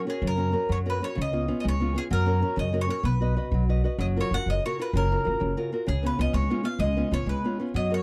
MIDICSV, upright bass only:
0, 0, Header, 1, 2, 480
1, 0, Start_track
1, 0, Key_signature, 5, "major"
1, 0, Tempo, 314301
1, 325, Time_signature, 6, 3, 24, 8
1, 6092, Key_signature, 6, "major"
1, 12257, End_track
2, 0, Start_track
2, 0, Title_t, "Upright bass"
2, 0, Program_c, 0, 32
2, 332, Note_on_c, 0, 42, 88
2, 806, Note_off_c, 0, 42, 0
2, 1061, Note_on_c, 0, 42, 72
2, 1530, Note_off_c, 0, 42, 0
2, 1796, Note_on_c, 0, 37, 87
2, 2256, Note_off_c, 0, 37, 0
2, 2515, Note_on_c, 0, 37, 83
2, 2972, Note_off_c, 0, 37, 0
2, 3219, Note_on_c, 0, 42, 102
2, 3680, Note_off_c, 0, 42, 0
2, 3927, Note_on_c, 0, 42, 90
2, 4391, Note_off_c, 0, 42, 0
2, 4636, Note_on_c, 0, 35, 93
2, 5107, Note_off_c, 0, 35, 0
2, 5368, Note_on_c, 0, 35, 88
2, 5840, Note_off_c, 0, 35, 0
2, 6086, Note_on_c, 0, 30, 92
2, 6409, Note_off_c, 0, 30, 0
2, 6583, Note_on_c, 0, 30, 74
2, 6734, Note_off_c, 0, 30, 0
2, 6814, Note_on_c, 0, 30, 66
2, 6984, Note_off_c, 0, 30, 0
2, 7535, Note_on_c, 0, 30, 88
2, 7853, Note_off_c, 0, 30, 0
2, 8041, Note_on_c, 0, 30, 81
2, 8184, Note_off_c, 0, 30, 0
2, 8261, Note_on_c, 0, 30, 86
2, 8426, Note_off_c, 0, 30, 0
2, 8977, Note_on_c, 0, 37, 94
2, 9289, Note_off_c, 0, 37, 0
2, 9454, Note_on_c, 0, 37, 93
2, 9600, Note_off_c, 0, 37, 0
2, 9669, Note_on_c, 0, 37, 91
2, 9840, Note_off_c, 0, 37, 0
2, 10368, Note_on_c, 0, 37, 92
2, 10694, Note_off_c, 0, 37, 0
2, 10873, Note_on_c, 0, 37, 84
2, 11026, Note_off_c, 0, 37, 0
2, 11082, Note_on_c, 0, 37, 73
2, 11262, Note_off_c, 0, 37, 0
2, 11823, Note_on_c, 0, 42, 79
2, 12149, Note_off_c, 0, 42, 0
2, 12257, End_track
0, 0, End_of_file